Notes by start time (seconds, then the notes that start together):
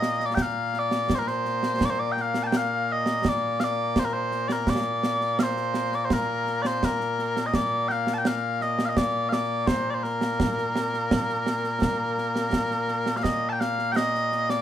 Already playing: A#2 A#3 D#5
0.02 snare
0.20 snare
0.26 D5
0.35 G5, concert bass drum, snare
0.42 F5
0.74 snare
0.79 D5
0.91 snare
1.10 concert bass drum, snare
1.15 A#4 C5
1.27 C5, snare
1.45 snare
1.63 snare
1.81 concert bass drum, snare
1.85 D5
1.90 C5
2.00 D5
2.12 G5
2.17 snare
2.22 F5
2.34 snare
2.44 G5 A5
2.52 snare
2.57 F5
2.92 D#5
3.06 snare
3.25 concert bass drum, snare
3.29 D5
3.60 D5 F5, snare
3.96 C5, concert bass drum, snare
4.05 A#4
4.13 C5
4.31 snare
4.48 D5, snare
4.52 A#4
4.67 D5, concert bass drum, snare
5.03 snare
5.21 snare
5.39 C5 F5, snare
5.57 snare
5.74 snare
5.92 D5, snare
6.05 C5
6.10 A#4, concert bass drum, snare
6.47 snare
6.62 D5, snare
6.67 C5
6.83 A#4, concert bass drum, snare
7.01 snare
7.19 snare
7.37 snare
7.46 D#5
7.54 D5, concert bass drum, snare
7.88 F5 G5, snare
8.07 snare
8.14 A5
8.18 G5
8.25 F5, snare
8.61 D#5, snare
8.79 snare
8.85 D#5 F5
8.97 D5, concert bass drum, snare
9.29 F5, snare
9.33 D5
9.67 C5, concert bass drum, snare
9.90 D5
9.94 C5
10.03 A#4, snare
10.21 snare
10.40 concert bass drum, snare
10.58 snare
10.76 snare
10.94 snare
11.11 concert bass drum, snare
11.29 snare
11.46 snare
11.64 snare
11.82 concert bass drum, snare
12.18 snare
12.36 snare
12.53 concert bass drum, snare
12.71 snare
12.88 snare
13.06 snare
13.17 F5
13.23 D#5, concert bass drum, snare
13.49 G5 A5
13.61 F5, snare
13.79 snare
13.92 D#5 G5
13.96 snare
14.15 snare
14.32 snare
14.50 D5, snare